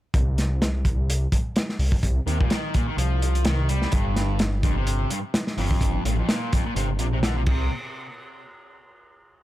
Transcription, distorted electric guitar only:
2.27 2.39 C3 medium
2.40 2.50 A#2 medium
2.51 2.73 D#3 medium
2.74 2.86 A#2 medium
2.87 2.96 D#3 medium
2.98 3.44 F3 medium
3.45 3.68 D#3 medium
3.69 3.92 G3 medium
3.92 4.39 G2 loud
4.63 4.75 F2 medium
4.76 5.10 C3 medium
5.10 5.17 G2 loud
5.58 6.04 F2 medium
6.05 6.17 G2 medium
6.18 6.28 F2 medium
6.29 6.51 A#2 medium
6.52 6.64 F2 medium
6.66 6.74 A#2 medium
6.76 6.88 C3 medium
7.00 7.06 C3 medium
7.13 7.18 C3 loud
7.23 7.35 D3 medium
7.37 7.42 C3 medium
7.47 7.69 C3 medium

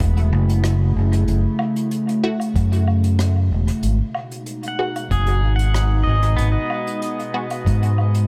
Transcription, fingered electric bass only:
0.00 0.32 E1 medium
0.32 0.93 F#1 medium
0.96 1.24 F#1 loud
1.28 1.43 F#1 loud
2.56 3.49 F#2 loud
3.51 3.66 E1 medium
3.83 3.98 G#1 loud
5.11 5.43 F#1 medium
5.43 6.04 G#1 medium
6.07 6.35 G#1 loud
6.39 6.53 G#1 loud
7.67 8.27 G#2 loud

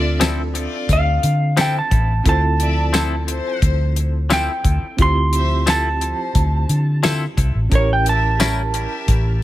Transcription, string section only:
0.00 0.21 F4 medium
0.00 0.21 D5 loud
0.00 0.20 E5 medium
0.55 1.23 F4 medium
0.55 1.23 D5 medium
2.25 2.42 E4 medium
2.25 2.43 F4 medium
2.25 2.43 C5 medium
2.60 2.94 F3 medium
2.60 2.94 D5 medium
2.60 2.94 E5 medium
3.28 3.96 F3 medium
3.28 3.97 C5 loud
4.98 5.16 E4 medium
4.98 5.16 F4 medium
4.98 5.16 C5 medium
5.32 5.66 F3 medium
5.32 5.67 C5 medium
5.32 5.66 E5 medium
6.01 6.69 F3 medium
6.01 6.70 C5 medium
7.70 7.89 G4 medium
7.70 7.89 A#4 medium
7.70 7.90 C#5 medium
8.04 8.39 G4 medium
8.04 8.40 A#4 medium
8.04 8.40 E5 medium
8.73 9.42 G4 medium
8.73 9.42 A#4 medium
8.73 9.42 E5 medium

